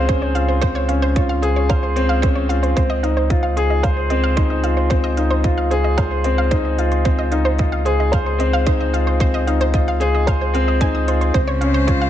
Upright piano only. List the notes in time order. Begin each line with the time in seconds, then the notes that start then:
Already playing: C4 C#4 F4 G#4 C5
0.08 C#4
0.35 F4
0.62 C4
0.89 C#4
1.16 F4
1.42 G#4
1.69 C5
1.96 C4
2.22 C#4
2.49 F4
2.76 C4
3.03 D#4
3.30 F4
3.57 G#4
3.83 C5
4.10 C4
4.36 D#4
4.63 F4
4.91 C4
5.17 D#4
5.45 F4
5.71 G#4
5.98 C5
6.25 C4
6.51 D#4
6.78 F4
7.05 C4
7.31 D#4
7.59 F4
7.85 G#4
8.12 C5
8.39 C4
8.66 D#4
8.93 F4
9.20 C4
9.47 D#4
9.73 F4
10.00 G#4
10.27 C5
10.54 C4
10.80 D#4
11.07 F4
11.34 C4
11.61 C#4
11.88 F4